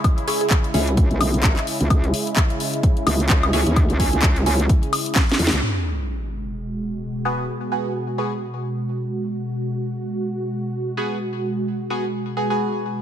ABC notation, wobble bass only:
X:1
M:4/4
L:1/16
Q:"Swing 16ths" 1/4=129
K:G#m
V:1 name="Wobble bass" clef=bass
z6 C,,3 B,,,4 z2 C,, | C,,2 z8 C,,2 C,,2 C,, D,,- | D,, C,,2 C,, C,,2 C,,2 z6 E,, C,, | z16 |
z16 | z16 | z16 |]